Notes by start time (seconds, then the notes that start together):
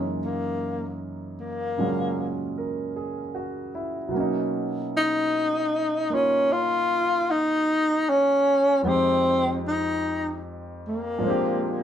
Already playing: F#2 C#3 E3 G#3 A#3 D#4
0.25 A#3
1.40 A#3
1.78 A#2 C#3 F#3 G#3 C#4
2.58 A#4
2.96 G#4
3.35 F#4
3.75 E4
4.09 B2 F#3
4.14 A#3 C#4
4.20 D#4
4.97 D#4
6.10 A#3 D#4 F4
6.14 C#4
6.52 F4
7.30 D#4
8.09 C#4
8.82 F2 F3 G#3 B3 D#4
8.87 C4 G4
9.68 D#4
10.88 A#3
11.18 A#2 F3
11.23 G#3 C4 D4
11.30 G4